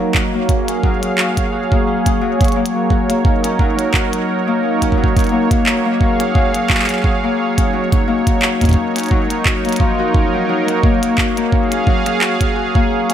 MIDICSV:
0, 0, Header, 1, 4, 480
1, 0, Start_track
1, 0, Key_signature, 6, "major"
1, 0, Tempo, 689655
1, 1541, Time_signature, 4, 2, 24, 8
1, 9143, End_track
2, 0, Start_track
2, 0, Title_t, "Analog synth pad"
2, 0, Program_c, 0, 89
2, 0, Note_on_c, 0, 54, 85
2, 0, Note_on_c, 0, 58, 78
2, 0, Note_on_c, 0, 63, 85
2, 0, Note_on_c, 0, 70, 93
2, 0, Note_on_c, 0, 73, 75
2, 299, Note_off_c, 0, 63, 0
2, 299, Note_off_c, 0, 70, 0
2, 381, Note_on_c, 0, 77, 91
2, 382, Note_on_c, 0, 68, 90
2, 1301, Note_off_c, 0, 58, 0
2, 1826, Note_on_c, 0, 70, 85
2, 2167, Note_on_c, 0, 63, 73
2, 2177, Note_off_c, 0, 68, 0
2, 2177, Note_off_c, 0, 77, 0
2, 3514, Note_on_c, 0, 58, 90
2, 4129, Note_on_c, 0, 77, 89
2, 4139, Note_off_c, 0, 63, 0
2, 4139, Note_off_c, 0, 70, 0
2, 4221, Note_on_c, 0, 68, 71
2, 5141, Note_off_c, 0, 58, 0
2, 5300, Note_on_c, 0, 63, 92
2, 5847, Note_off_c, 0, 77, 0
2, 6016, Note_off_c, 0, 68, 0
2, 6114, Note_on_c, 0, 70, 85
2, 7417, Note_on_c, 0, 58, 80
2, 7979, Note_off_c, 0, 63, 0
2, 7979, Note_off_c, 0, 70, 0
2, 8061, Note_on_c, 0, 68, 82
2, 8061, Note_on_c, 0, 77, 81
2, 8981, Note_off_c, 0, 58, 0
2, 9143, Note_off_c, 0, 54, 0
2, 9143, Note_off_c, 0, 68, 0
2, 9143, Note_off_c, 0, 73, 0
2, 9143, Note_off_c, 0, 77, 0
2, 9143, End_track
3, 0, Start_track
3, 0, Title_t, "Harp"
3, 0, Program_c, 1, 46
3, 0, Note_on_c, 1, 54, 71
3, 0, Note_on_c, 1, 58, 91
3, 0, Note_on_c, 1, 61, 73
3, 0, Note_on_c, 1, 66, 100
3, 98, Note_off_c, 1, 66, 0
3, 101, Note_on_c, 1, 66, 77
3, 232, Note_off_c, 1, 58, 0
3, 235, Note_on_c, 1, 58, 93
3, 338, Note_off_c, 1, 61, 0
3, 341, Note_on_c, 1, 61, 74
3, 472, Note_off_c, 1, 61, 0
3, 475, Note_on_c, 1, 61, 99
3, 572, Note_off_c, 1, 54, 0
3, 581, Note_on_c, 1, 54, 100
3, 707, Note_off_c, 1, 54, 0
3, 715, Note_on_c, 1, 54, 74
3, 818, Note_off_c, 1, 66, 0
3, 821, Note_on_c, 1, 66, 96
3, 947, Note_off_c, 1, 54, 0
3, 955, Note_on_c, 1, 54, 74
3, 1058, Note_off_c, 1, 66, 0
3, 1061, Note_on_c, 1, 66, 80
3, 1193, Note_off_c, 1, 58, 0
3, 1195, Note_on_c, 1, 58, 98
3, 1298, Note_off_c, 1, 61, 0
3, 1301, Note_on_c, 1, 61, 73
3, 1336, Note_off_c, 1, 54, 0
3, 1433, Note_off_c, 1, 61, 0
3, 1435, Note_on_c, 1, 61, 98
3, 1541, Note_on_c, 1, 54, 97
3, 1667, Note_off_c, 1, 54, 0
3, 1675, Note_on_c, 1, 54, 75
3, 1778, Note_off_c, 1, 58, 0
3, 1781, Note_on_c, 1, 58, 95
3, 1907, Note_off_c, 1, 54, 0
3, 1915, Note_on_c, 1, 54, 71
3, 2018, Note_off_c, 1, 66, 0
3, 2021, Note_on_c, 1, 66, 77
3, 2153, Note_off_c, 1, 58, 0
3, 2156, Note_on_c, 1, 58, 96
3, 2258, Note_off_c, 1, 61, 0
3, 2261, Note_on_c, 1, 61, 76
3, 2393, Note_off_c, 1, 61, 0
3, 2395, Note_on_c, 1, 61, 100
3, 2493, Note_off_c, 1, 54, 0
3, 2501, Note_on_c, 1, 54, 105
3, 2627, Note_off_c, 1, 54, 0
3, 2636, Note_on_c, 1, 54, 75
3, 2738, Note_off_c, 1, 66, 0
3, 2741, Note_on_c, 1, 66, 97
3, 2867, Note_off_c, 1, 54, 0
3, 2875, Note_on_c, 1, 54, 76
3, 2978, Note_off_c, 1, 66, 0
3, 2981, Note_on_c, 1, 66, 80
3, 3112, Note_off_c, 1, 58, 0
3, 3115, Note_on_c, 1, 58, 101
3, 3218, Note_off_c, 1, 61, 0
3, 3221, Note_on_c, 1, 61, 77
3, 3353, Note_off_c, 1, 61, 0
3, 3355, Note_on_c, 1, 61, 100
3, 3452, Note_off_c, 1, 54, 0
3, 3461, Note_on_c, 1, 54, 99
3, 3587, Note_off_c, 1, 54, 0
3, 3595, Note_on_c, 1, 54, 75
3, 3698, Note_off_c, 1, 58, 0
3, 3701, Note_on_c, 1, 58, 92
3, 3827, Note_off_c, 1, 54, 0
3, 3835, Note_on_c, 1, 54, 74
3, 3938, Note_off_c, 1, 66, 0
3, 3941, Note_on_c, 1, 66, 78
3, 4073, Note_off_c, 1, 58, 0
3, 4075, Note_on_c, 1, 58, 96
3, 4178, Note_off_c, 1, 61, 0
3, 4181, Note_on_c, 1, 61, 75
3, 4312, Note_off_c, 1, 61, 0
3, 4315, Note_on_c, 1, 61, 96
3, 4413, Note_off_c, 1, 54, 0
3, 4421, Note_on_c, 1, 54, 104
3, 4547, Note_off_c, 1, 54, 0
3, 4555, Note_on_c, 1, 54, 75
3, 4658, Note_off_c, 1, 66, 0
3, 4661, Note_on_c, 1, 66, 99
3, 4787, Note_off_c, 1, 54, 0
3, 4795, Note_on_c, 1, 54, 75
3, 4898, Note_off_c, 1, 66, 0
3, 4901, Note_on_c, 1, 66, 78
3, 5033, Note_off_c, 1, 58, 0
3, 5035, Note_on_c, 1, 58, 97
3, 5138, Note_off_c, 1, 61, 0
3, 5141, Note_on_c, 1, 61, 75
3, 5176, Note_off_c, 1, 54, 0
3, 5273, Note_off_c, 1, 61, 0
3, 5276, Note_on_c, 1, 61, 99
3, 5381, Note_on_c, 1, 54, 98
3, 5507, Note_off_c, 1, 54, 0
3, 5516, Note_on_c, 1, 54, 74
3, 5618, Note_off_c, 1, 58, 0
3, 5621, Note_on_c, 1, 58, 94
3, 5747, Note_off_c, 1, 54, 0
3, 5756, Note_on_c, 1, 54, 74
3, 5858, Note_off_c, 1, 66, 0
3, 5861, Note_on_c, 1, 66, 78
3, 5992, Note_off_c, 1, 58, 0
3, 5995, Note_on_c, 1, 58, 97
3, 6098, Note_off_c, 1, 61, 0
3, 6101, Note_on_c, 1, 61, 77
3, 6232, Note_off_c, 1, 61, 0
3, 6235, Note_on_c, 1, 61, 97
3, 6332, Note_off_c, 1, 54, 0
3, 6341, Note_on_c, 1, 54, 104
3, 6467, Note_off_c, 1, 54, 0
3, 6475, Note_on_c, 1, 54, 73
3, 6578, Note_off_c, 1, 66, 0
3, 6581, Note_on_c, 1, 66, 98
3, 6712, Note_off_c, 1, 58, 0
3, 6715, Note_on_c, 1, 58, 75
3, 6821, Note_on_c, 1, 53, 96
3, 6863, Note_off_c, 1, 66, 0
3, 6955, Note_on_c, 1, 66, 98
3, 7058, Note_off_c, 1, 61, 0
3, 7061, Note_on_c, 1, 61, 73
3, 7187, Note_off_c, 1, 54, 0
3, 7195, Note_on_c, 1, 54, 74
3, 7293, Note_off_c, 1, 54, 0
3, 7301, Note_on_c, 1, 54, 98
3, 7336, Note_off_c, 1, 53, 0
3, 7428, Note_off_c, 1, 54, 0
3, 7436, Note_on_c, 1, 54, 73
3, 7538, Note_off_c, 1, 58, 0
3, 7541, Note_on_c, 1, 58, 92
3, 7667, Note_off_c, 1, 54, 0
3, 7675, Note_on_c, 1, 54, 73
3, 7778, Note_off_c, 1, 66, 0
3, 7781, Note_on_c, 1, 66, 82
3, 7912, Note_off_c, 1, 58, 0
3, 7915, Note_on_c, 1, 58, 99
3, 8018, Note_off_c, 1, 61, 0
3, 8021, Note_on_c, 1, 61, 76
3, 8153, Note_off_c, 1, 61, 0
3, 8155, Note_on_c, 1, 61, 97
3, 8253, Note_off_c, 1, 54, 0
3, 8261, Note_on_c, 1, 54, 100
3, 8387, Note_off_c, 1, 54, 0
3, 8395, Note_on_c, 1, 54, 75
3, 8498, Note_off_c, 1, 66, 0
3, 8501, Note_on_c, 1, 66, 95
3, 8627, Note_off_c, 1, 54, 0
3, 8635, Note_on_c, 1, 54, 77
3, 8738, Note_off_c, 1, 66, 0
3, 8741, Note_on_c, 1, 66, 81
3, 8873, Note_off_c, 1, 58, 0
3, 8875, Note_on_c, 1, 58, 100
3, 8978, Note_off_c, 1, 61, 0
3, 8981, Note_on_c, 1, 61, 75
3, 9016, Note_off_c, 1, 54, 0
3, 9113, Note_off_c, 1, 61, 0
3, 9116, Note_on_c, 1, 61, 95
3, 9143, Note_off_c, 1, 58, 0
3, 9143, Note_off_c, 1, 61, 0
3, 9143, Note_off_c, 1, 66, 0
3, 9143, End_track
4, 0, Start_track
4, 0, Title_t, "Drums"
4, 101, Note_on_c, 9, 36, 117
4, 101, Note_on_c, 9, 39, 113
4, 171, Note_off_c, 9, 36, 0
4, 171, Note_off_c, 9, 39, 0
4, 341, Note_on_c, 9, 36, 104
4, 341, Note_on_c, 9, 42, 53
4, 411, Note_off_c, 9, 36, 0
4, 411, Note_off_c, 9, 42, 0
4, 475, Note_on_c, 9, 42, 67
4, 545, Note_off_c, 9, 42, 0
4, 581, Note_on_c, 9, 36, 106
4, 651, Note_off_c, 9, 36, 0
4, 715, Note_on_c, 9, 42, 53
4, 785, Note_off_c, 9, 42, 0
4, 821, Note_on_c, 9, 39, 108
4, 891, Note_off_c, 9, 39, 0
4, 955, Note_on_c, 9, 36, 99
4, 955, Note_on_c, 9, 42, 66
4, 1025, Note_off_c, 9, 36, 0
4, 1025, Note_off_c, 9, 42, 0
4, 1195, Note_on_c, 9, 36, 114
4, 1265, Note_off_c, 9, 36, 0
4, 1435, Note_on_c, 9, 36, 100
4, 1435, Note_on_c, 9, 42, 63
4, 1505, Note_off_c, 9, 36, 0
4, 1505, Note_off_c, 9, 42, 0
4, 1675, Note_on_c, 9, 36, 121
4, 1675, Note_on_c, 9, 42, 36
4, 1702, Note_off_c, 9, 42, 0
4, 1702, Note_on_c, 9, 42, 29
4, 1728, Note_off_c, 9, 42, 0
4, 1728, Note_on_c, 9, 42, 24
4, 1745, Note_off_c, 9, 36, 0
4, 1755, Note_off_c, 9, 42, 0
4, 1755, Note_on_c, 9, 42, 20
4, 1824, Note_off_c, 9, 42, 0
4, 1849, Note_on_c, 9, 42, 66
4, 1918, Note_off_c, 9, 42, 0
4, 2021, Note_on_c, 9, 36, 104
4, 2090, Note_off_c, 9, 36, 0
4, 2156, Note_on_c, 9, 42, 52
4, 2225, Note_off_c, 9, 42, 0
4, 2261, Note_on_c, 9, 36, 123
4, 2330, Note_off_c, 9, 36, 0
4, 2395, Note_on_c, 9, 42, 65
4, 2465, Note_off_c, 9, 42, 0
4, 2501, Note_on_c, 9, 36, 101
4, 2570, Note_off_c, 9, 36, 0
4, 2636, Note_on_c, 9, 42, 53
4, 2705, Note_off_c, 9, 42, 0
4, 2741, Note_on_c, 9, 36, 119
4, 2741, Note_on_c, 9, 39, 116
4, 2811, Note_off_c, 9, 36, 0
4, 2811, Note_off_c, 9, 39, 0
4, 2875, Note_on_c, 9, 42, 67
4, 2945, Note_off_c, 9, 42, 0
4, 3355, Note_on_c, 9, 36, 52
4, 3355, Note_on_c, 9, 42, 64
4, 3425, Note_off_c, 9, 36, 0
4, 3425, Note_off_c, 9, 42, 0
4, 3426, Note_on_c, 9, 36, 70
4, 3495, Note_off_c, 9, 36, 0
4, 3506, Note_on_c, 9, 36, 88
4, 3575, Note_off_c, 9, 36, 0
4, 3595, Note_on_c, 9, 36, 110
4, 3595, Note_on_c, 9, 42, 36
4, 3613, Note_off_c, 9, 42, 0
4, 3613, Note_on_c, 9, 42, 29
4, 3621, Note_off_c, 9, 42, 0
4, 3621, Note_on_c, 9, 42, 23
4, 3648, Note_off_c, 9, 42, 0
4, 3648, Note_on_c, 9, 42, 19
4, 3665, Note_off_c, 9, 36, 0
4, 3666, Note_off_c, 9, 42, 0
4, 3666, Note_on_c, 9, 42, 16
4, 3735, Note_off_c, 9, 42, 0
4, 3835, Note_on_c, 9, 36, 121
4, 3835, Note_on_c, 9, 42, 66
4, 3905, Note_off_c, 9, 36, 0
4, 3905, Note_off_c, 9, 42, 0
4, 3941, Note_on_c, 9, 39, 118
4, 4010, Note_off_c, 9, 39, 0
4, 4181, Note_on_c, 9, 36, 108
4, 4250, Note_off_c, 9, 36, 0
4, 4315, Note_on_c, 9, 42, 64
4, 4385, Note_off_c, 9, 42, 0
4, 4421, Note_on_c, 9, 36, 116
4, 4490, Note_off_c, 9, 36, 0
4, 4555, Note_on_c, 9, 42, 52
4, 4625, Note_off_c, 9, 42, 0
4, 4661, Note_on_c, 9, 36, 109
4, 4661, Note_on_c, 9, 39, 114
4, 4694, Note_off_c, 9, 39, 0
4, 4694, Note_on_c, 9, 39, 91
4, 4728, Note_off_c, 9, 39, 0
4, 4728, Note_on_c, 9, 39, 74
4, 4730, Note_off_c, 9, 36, 0
4, 4762, Note_off_c, 9, 39, 0
4, 4762, Note_on_c, 9, 39, 61
4, 4795, Note_off_c, 9, 39, 0
4, 4795, Note_on_c, 9, 39, 51
4, 4795, Note_on_c, 9, 42, 64
4, 4822, Note_off_c, 9, 39, 0
4, 4822, Note_on_c, 9, 39, 43
4, 4848, Note_off_c, 9, 39, 0
4, 4848, Note_on_c, 9, 39, 34
4, 4865, Note_off_c, 9, 42, 0
4, 4875, Note_off_c, 9, 39, 0
4, 4875, Note_on_c, 9, 39, 29
4, 4901, Note_on_c, 9, 36, 122
4, 4944, Note_off_c, 9, 39, 0
4, 4970, Note_off_c, 9, 36, 0
4, 5275, Note_on_c, 9, 36, 107
4, 5275, Note_on_c, 9, 42, 65
4, 5345, Note_off_c, 9, 36, 0
4, 5345, Note_off_c, 9, 42, 0
4, 5515, Note_on_c, 9, 36, 117
4, 5515, Note_on_c, 9, 42, 36
4, 5585, Note_off_c, 9, 36, 0
4, 5585, Note_off_c, 9, 42, 0
4, 5755, Note_on_c, 9, 36, 110
4, 5755, Note_on_c, 9, 42, 61
4, 5825, Note_off_c, 9, 36, 0
4, 5825, Note_off_c, 9, 42, 0
4, 5861, Note_on_c, 9, 39, 116
4, 5930, Note_off_c, 9, 39, 0
4, 5995, Note_on_c, 9, 36, 53
4, 5995, Note_on_c, 9, 42, 47
4, 6013, Note_off_c, 9, 36, 0
4, 6013, Note_on_c, 9, 36, 65
4, 6021, Note_off_c, 9, 36, 0
4, 6021, Note_on_c, 9, 36, 74
4, 6022, Note_off_c, 9, 42, 0
4, 6022, Note_on_c, 9, 42, 39
4, 6048, Note_off_c, 9, 36, 0
4, 6048, Note_off_c, 9, 42, 0
4, 6048, Note_on_c, 9, 36, 82
4, 6048, Note_on_c, 9, 42, 33
4, 6066, Note_off_c, 9, 36, 0
4, 6066, Note_on_c, 9, 36, 96
4, 6075, Note_off_c, 9, 42, 0
4, 6075, Note_on_c, 9, 42, 27
4, 6083, Note_off_c, 9, 36, 0
4, 6083, Note_on_c, 9, 36, 103
4, 6144, Note_off_c, 9, 42, 0
4, 6153, Note_off_c, 9, 36, 0
4, 6235, Note_on_c, 9, 42, 61
4, 6253, Note_off_c, 9, 42, 0
4, 6253, Note_on_c, 9, 42, 48
4, 6306, Note_off_c, 9, 42, 0
4, 6306, Note_on_c, 9, 42, 27
4, 6323, Note_off_c, 9, 42, 0
4, 6323, Note_on_c, 9, 42, 22
4, 6341, Note_on_c, 9, 36, 102
4, 6393, Note_off_c, 9, 42, 0
4, 6410, Note_off_c, 9, 36, 0
4, 6476, Note_on_c, 9, 42, 50
4, 6545, Note_off_c, 9, 42, 0
4, 6581, Note_on_c, 9, 36, 121
4, 6581, Note_on_c, 9, 39, 117
4, 6650, Note_off_c, 9, 36, 0
4, 6651, Note_off_c, 9, 39, 0
4, 6716, Note_on_c, 9, 42, 28
4, 6742, Note_off_c, 9, 42, 0
4, 6742, Note_on_c, 9, 42, 36
4, 6769, Note_off_c, 9, 42, 0
4, 6769, Note_on_c, 9, 42, 45
4, 6795, Note_off_c, 9, 42, 0
4, 6795, Note_on_c, 9, 42, 53
4, 6821, Note_on_c, 9, 36, 106
4, 6865, Note_off_c, 9, 42, 0
4, 6890, Note_off_c, 9, 36, 0
4, 7061, Note_on_c, 9, 36, 124
4, 7130, Note_off_c, 9, 36, 0
4, 7436, Note_on_c, 9, 26, 36
4, 7436, Note_on_c, 9, 42, 34
4, 7505, Note_off_c, 9, 26, 0
4, 7505, Note_off_c, 9, 42, 0
4, 7541, Note_on_c, 9, 36, 109
4, 7610, Note_off_c, 9, 36, 0
4, 7676, Note_on_c, 9, 42, 61
4, 7745, Note_off_c, 9, 42, 0
4, 7781, Note_on_c, 9, 36, 111
4, 7781, Note_on_c, 9, 39, 114
4, 7850, Note_off_c, 9, 36, 0
4, 7851, Note_off_c, 9, 39, 0
4, 7916, Note_on_c, 9, 42, 48
4, 7985, Note_off_c, 9, 42, 0
4, 8021, Note_on_c, 9, 36, 105
4, 8090, Note_off_c, 9, 36, 0
4, 8156, Note_on_c, 9, 42, 60
4, 8225, Note_off_c, 9, 42, 0
4, 8261, Note_on_c, 9, 36, 112
4, 8330, Note_off_c, 9, 36, 0
4, 8396, Note_on_c, 9, 26, 48
4, 8396, Note_on_c, 9, 42, 47
4, 8465, Note_off_c, 9, 26, 0
4, 8465, Note_off_c, 9, 42, 0
4, 8501, Note_on_c, 9, 39, 112
4, 8570, Note_off_c, 9, 39, 0
4, 8635, Note_on_c, 9, 36, 101
4, 8635, Note_on_c, 9, 42, 61
4, 8705, Note_off_c, 9, 36, 0
4, 8705, Note_off_c, 9, 42, 0
4, 8875, Note_on_c, 9, 36, 115
4, 8945, Note_off_c, 9, 36, 0
4, 9116, Note_on_c, 9, 42, 59
4, 9143, Note_off_c, 9, 42, 0
4, 9143, End_track
0, 0, End_of_file